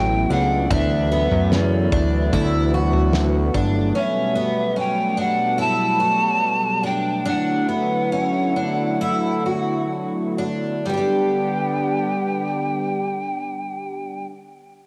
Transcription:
0.00 0.26 A1 loud
0.00 0.67 B2 medium
0.00 0.30 F#3 medium
0.00 0.67 F#3 medium
0.00 0.68 A3 medium
0.00 10.81 B3 medium
0.00 0.67 E4 medium
0.00 0.34 G5 medium
0.30 0.69 C#2 medium
0.30 0.70 D4 medium
0.30 0.72 F#5 medium
0.71 1.28 D2 loud
0.71 3.92 E3 medium
0.71 3.92 F#3 medium
0.71 7.22 A3 medium
0.71 1.11 D4 medium
0.71 3.92 E4 medium
0.71 1.55 E5 medium
0.71 kick loud
0.71 floor tom loud
1.12 1.52 B3 medium
1.31 1.89 F#2 medium
1.31 floor tom medium
1.52 1.93 C#3 medium
1.52 3.15 D5 medium
1.52 snare medium
1.92 2.31 D2 medium
1.92 2.33 D4 medium
1.92 kick medium
2.33 3.50 D2 loud
2.33 2.74 E4 medium
2.33 kick medium
2.33 floor tom soft
2.74 3.55 F#4 medium
2.93 floor tom medium
3.13 snare medium
3.54 3.93 G1 medium
3.54 3.95 D4 medium
3.54 kick medium
3.94 7.22 B2 medium
3.94 7.22 F#3 medium
3.94 7.22 G3 medium
3.94 4.35 C#4 medium
3.94 4.81 E5 medium
4.36 4.76 B3 medium
4.76 5.17 C#4 medium
4.76 5.22 G5 medium
5.17 5.58 D4 medium
5.17 5.62 F#5 medium
5.58 5.99 E4 medium
5.58 6.87 A5 loud
6.00 6.83 F#4 medium
6.83 7.24 D4 medium
6.83 7.29 G5 medium
7.25 10.82 D3 medium
7.25 10.82 F#3 medium
7.25 10.82 A3 medium
7.25 7.68 D4 medium
7.25 10.82 E4 medium
7.25 9.92 F#5 medium
7.69 8.12 B3 medium
8.12 8.56 C#4 medium
8.56 9.00 D4 medium
9.01 9.45 E4 medium
9.46 10.38 F#4 medium
10.38 10.85 D4 medium
10.85 14.24 D3 medium
10.85 14.24 G3 medium
10.85 14.24 B3 medium
10.85 14.24 D4 medium
10.85 14.24 G4 medium
10.85 14.26 G5 medium
10.89 10.93 B3 medium
10.93 14.32 D4 medium
10.93 14.36 G4 medium

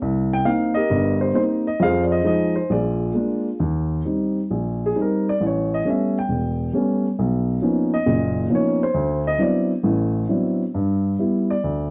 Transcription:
0.02 0.41 C2 medium
0.33 0.46 G5 medium
0.45 0.78 A#3 soft
0.45 0.78 C4 soft
0.45 0.78 D#4 medium
0.45 0.74 F5 medium
0.74 1.62 G4 medium
0.74 1.62 A#4 medium
0.74 1.17 D#5 medium
0.90 1.29 G1 medium
0.90 1.30 G2 medium
1.21 1.34 C5 medium
1.34 1.67 A#3 soft
1.34 1.67 C4 soft
1.34 1.67 D#4 medium
1.34 1.42 C5 medium
1.67 1.81 D#5 medium
1.80 2.19 F2 medium
1.80 2.19 F3 medium
1.80 2.68 G#4 medium
1.80 2.03 F5 medium
1.85 2.54 C5 medium
2.03 2.11 D5 medium
2.12 2.25 D#5 medium
2.24 2.57 F3 medium
2.24 2.57 G#3 soft
2.24 2.57 D#4 medium
2.24 2.55 D#5 medium
2.56 2.71 C5 medium
2.70 3.10 A#1 medium
2.70 3.58 F4 medium
2.70 3.59 G#4 medium
2.70 3.44 D5 medium
3.14 3.48 G#3 soft
3.14 3.48 A#3 soft
3.14 3.48 D4 medium
3.60 4.00 D#2 medium
4.05 4.38 G3 soft
4.05 4.39 C4 soft
4.05 4.39 D#4 soft
4.51 4.90 A#1 medium
4.86 4.98 G#4 medium
4.96 5.28 G3 soft
4.96 5.28 C4 soft
4.96 5.28 D#4 medium
5.02 5.29 A#4 medium
5.29 5.42 D5 medium
5.41 5.79 A1 medium
5.46 5.73 C#5 medium
5.74 5.86 D#5 medium
5.85 6.17 G3 soft
5.85 6.17 A3 soft
5.85 6.17 B3 soft
5.85 6.17 C#4 medium
6.19 6.72 G5 medium
6.29 6.68 E1 medium
6.73 7.05 G3 soft
6.73 7.06 A3 soft
6.73 7.06 B3 soft
6.73 7.06 C#4 medium
7.19 7.57 B1 medium
7.62 7.93 F3 soft
7.62 7.94 A#3 soft
7.62 7.94 B3 soft
7.62 7.94 C#4 soft
7.62 7.94 D#4 medium
7.94 8.47 D#5 medium
8.06 8.45 F#1 medium
8.06 8.45 A#2 medium
8.49 8.82 F3 soft
8.49 8.82 A#3 soft
8.49 8.82 B3 soft
8.49 8.82 C#4 soft
8.49 8.82 D#4 medium
8.55 8.82 C#5 medium
8.83 9.23 C5 medium
8.94 9.33 D2 medium
9.27 9.40 D#5 medium
9.38 9.71 F#3 soft
9.38 9.71 B3 soft
9.38 9.71 C4 soft
9.38 9.71 D4 soft
9.38 9.71 E4 medium
9.38 9.70 D5 medium
9.83 10.23 A1 medium
9.83 10.23 A2 medium
10.29 10.62 F#3 soft
10.29 10.62 B3 soft
10.29 10.62 C4 soft
10.29 10.62 D4 soft
10.29 10.62 E4 medium
10.75 11.14 G2 medium
11.19 11.51 G3 soft
11.19 11.51 B3 soft
11.19 11.52 E4 medium
11.50 11.90 D5 medium
11.64 11.90 D2 medium

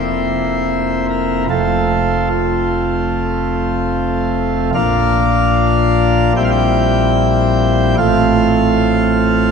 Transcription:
0.00 1.46 F1 medium
0.00 1.46 F2 medium
0.00 1.46 A#3 soft
0.00 1.46 C4 soft
0.00 1.46 E4 soft
0.00 1.06 C5 medium
1.10 1.44 A#4 medium
1.49 4.70 F1 medium
1.49 4.70 F2 medium
1.49 4.70 A3 soft
1.49 4.70 C4 medium
1.49 2.28 F4 soft
1.49 2.28 A4 loud
2.30 4.70 F4 medium
4.74 6.32 A#1 medium
4.74 6.32 A#2 medium
4.74 6.32 A#3 medium
4.74 6.32 D4 medium
4.74 6.32 F4 medium
4.74 6.32 F5 loud
6.36 7.95 A#1 medium
6.36 7.95 A#2 medium
6.36 7.95 G3 soft
6.36 7.95 C4 soft
6.36 7.95 E4 soft
6.36 6.42 G5 loud
6.44 6.49 F5 loud
6.51 7.95 G5 loud
7.98 9.51 A1 medium
7.98 9.51 A2 medium
7.98 9.51 A3 medium
7.98 9.51 C4 medium
7.98 9.51 F4 medium
7.98 9.51 F5 loud

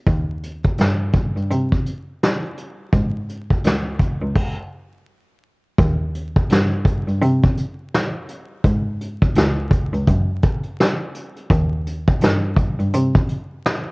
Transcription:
0.07 0.74 D#2 medium
0.07 kick loud
0.07 closed hi-hat medium
0.43 closed hi-hat medium
0.64 kick medium
0.64 closed hi-hat soft
0.78 1.32 G2 loud
0.78 snare loud
0.78 closed hi-hat medium
1.14 kick medium
1.14 closed hi-hat soft
1.36 1.50 G2 medium
1.36 closed hi-hat soft
1.51 1.84 C3 loud
1.51 closed hi-hat medium
1.72 kick medium
1.86 closed hi-hat medium
2.23 snare medium
2.23 closed hi-hat medium
2.58 closed hi-hat medium
2.93 3.60 G#2 medium
2.93 kick loud
2.93 closed hi-hat medium
3.29 closed hi-hat medium
3.50 kick medium
3.64 4.18 C#2 medium
3.64 snare loud
3.64 closed hi-hat medium
3.99 kick medium
3.99 closed hi-hat medium
4.22 4.35 C#2 medium
4.35 kick loud
4.35 crash medium
5.78 6.46 D#2 loud
5.78 kick loud
5.78 closed hi-hat medium
6.15 closed hi-hat medium
6.36 kick medium
6.50 7.04 G2 medium
6.50 snare loud
6.50 closed hi-hat medium
6.85 kick loud
6.85 closed hi-hat medium
7.08 7.21 G2 medium
7.08 closed hi-hat soft
7.22 7.55 C3 loud
7.22 closed hi-hat medium
7.44 kick medium
7.57 closed hi-hat medium
7.94 snare loud
7.94 closed hi-hat medium
8.29 closed hi-hat medium
8.64 9.32 G#2 loud
8.64 kick loud
8.64 closed hi-hat medium
9.01 closed hi-hat medium
9.22 kick medium
9.35 9.90 C#2 loud
9.35 snare loud
9.35 closed hi-hat medium
9.71 kick medium
9.71 closed hi-hat medium
9.93 10.07 C#2 medium
9.93 closed hi-hat soft
10.07 10.41 F#2 loud
10.07 kick medium
10.07 closed hi-hat medium
10.43 kick loud
10.43 closed hi-hat medium
10.63 closed hi-hat soft
10.80 snare medium
10.80 closed hi-hat medium
11.14 closed hi-hat medium
11.36 closed hi-hat soft
11.50 12.18 D#2 loud
11.50 kick loud
11.50 closed hi-hat medium
11.86 closed hi-hat medium
12.08 kick medium
12.21 12.75 G2 loud
12.21 snare loud
12.21 closed hi-hat medium
12.57 kick medium
12.57 closed hi-hat medium
12.79 12.93 G2 medium
12.79 closed hi-hat soft
12.93 13.27 C3 loud
12.93 closed hi-hat medium
13.15 kick loud
13.29 closed hi-hat medium
13.66 snare loud
13.66 closed hi-hat medium

